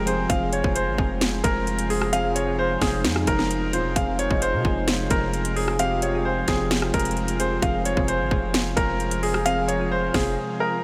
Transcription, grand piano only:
0.07 0.27 C5 medium
0.29 0.50 F5 medium
0.53 0.73 C#5 medium
0.75 1.19 C5 medium
1.44 1.87 A#4 medium
1.90 2.10 G#4 medium
2.13 2.33 F5 loud
2.35 2.55 C#5 medium
2.59 2.79 C5 medium
2.82 3.02 G#4 medium
3.27 3.71 A#4 medium
3.73 3.93 C5 medium
3.96 4.16 F5 medium
4.19 4.39 C#5 medium
4.42 4.85 C5 medium
5.11 5.54 A#4 medium
5.56 5.76 G#4 medium
5.80 5.99 F5 loud
6.02 6.22 C#5 medium
6.25 6.45 C5 medium
6.48 6.68 G#4 medium
6.94 7.37 A#4 medium
7.40 7.60 C5 medium
7.62 7.82 F5 medium
7.85 8.05 C#5 medium
8.08 8.51 C5 medium
8.77 9.20 A#4 medium
9.23 9.43 G#4 medium
9.46 9.66 F5 loud
9.68 9.88 C#5 medium
9.91 10.11 C5 medium
10.14 10.34 G#4 medium
10.60 10.84 A#4 medium

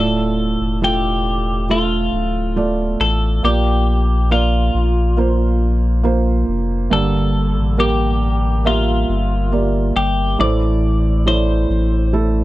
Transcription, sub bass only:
0.00 0.57 D1 loud
0.61 2.09 E1 medium
2.13 2.96 D1 medium
3.00 3.41 A1 medium
3.44 4.70 A#1 loud
4.74 6.44 A#1 medium
6.48 6.89 F1 medium
6.91 7.58 G1 medium
7.56 9.05 A1 medium
9.09 9.92 G1 medium
9.96 10.36 G1 medium
10.39 11.66 A1 medium
11.70 12.44 A1 medium

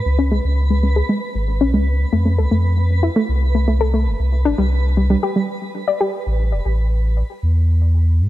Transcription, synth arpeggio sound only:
0.19 0.29 C#4 loud
0.32 0.38 G#3 loud
0.70 0.81 G#3 medium
0.83 0.90 G#3 medium
0.96 1.08 G#4 medium
1.09 1.20 G#3 medium
1.61 1.72 C#4 loud
1.74 1.80 G#3 loud
2.13 2.24 A3 medium
2.25 2.32 A3 medium
2.38 2.51 A4 medium
2.51 2.62 A3 medium
3.03 3.14 E4 loud
3.16 3.23 A3 loud
3.55 3.66 A3 medium
3.68 3.74 A3 medium
3.81 3.93 A4 medium
3.94 4.05 A3 medium
4.45 4.56 D4 loud
4.58 4.65 G3 loud
4.97 5.08 G3 medium
5.10 5.17 G3 medium
5.23 5.35 G4 medium
5.36 5.47 G3 medium
5.88 5.99 D5 medium
6.01 6.11 G4 medium

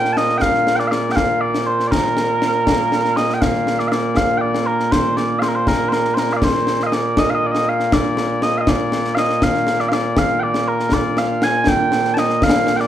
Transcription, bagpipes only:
0.00 12.87 A#2 medium
0.00 12.87 A#3 medium
0.00 0.13 G5 loud
0.13 0.17 A5 medium
0.17 0.38 D#5 medium
0.38 0.76 F5 loud
0.38 0.42 G5 loud
0.76 0.88 D5 medium
0.76 0.79 G5 medium
0.88 1.12 D5 medium
0.88 0.91 F5 medium
1.12 1.16 G5 loud
1.16 1.41 F5 loud
1.41 1.66 D5 medium
1.66 1.87 C5 medium
1.87 1.91 D5 medium
1.91 3.17 A#4 medium
3.17 3.34 D#5 medium
3.34 3.41 G5 medium
3.41 3.80 F5 medium
3.80 3.88 D5 medium
3.88 3.92 F5 medium
3.92 4.17 D5 medium
4.17 4.38 F5 loud
4.38 4.67 D5 medium
4.38 4.41 G5 medium
4.67 4.92 A#4 medium
4.92 5.17 C5 medium
5.17 5.39 D5 medium
5.39 5.48 C5 medium
5.39 5.42 F5 medium
5.48 5.56 A#4 medium
5.56 5.68 C5 medium
5.68 5.89 A#4 medium
5.89 5.93 C5 medium
5.93 6.14 A#4 medium
6.14 6.19 C5 medium
6.19 6.33 A#4 medium
6.33 6.44 D5 medium
6.33 6.37 F5 medium
6.44 6.83 C5 medium
6.83 6.94 D#5 medium
6.83 6.87 F5 medium
6.94 7.19 D5 medium
7.19 7.30 D#5 loud
7.30 7.35 F5 medium
7.35 7.47 D#5 loud
7.47 7.52 D5 medium
7.52 7.69 D#5 loud
7.69 7.93 F5 medium
7.93 8.43 D5 loud
8.43 8.58 D#5 medium
8.58 8.69 D#5 medium
8.58 8.61 F5 medium
8.69 9.15 D5 loud
9.15 9.43 D#5 medium
9.15 9.18 F5 medium
9.43 9.80 F5 loud
9.80 9.89 D5 medium
9.89 9.93 F5 medium
9.93 10.18 D5 medium
10.18 10.40 F5 loud
10.40 10.68 D5 loud
10.40 10.43 G5 loud
10.68 10.93 A#4 medium
10.93 11.18 D5 loud
11.18 11.43 F5 medium
11.43 11.68 G#5 medium
11.68 12.14 G5 loud
12.14 12.18 A5 medium
12.18 12.44 D#5 medium
12.44 12.76 F5 loud
12.76 12.81 G5 medium
12.81 12.87 D5 medium

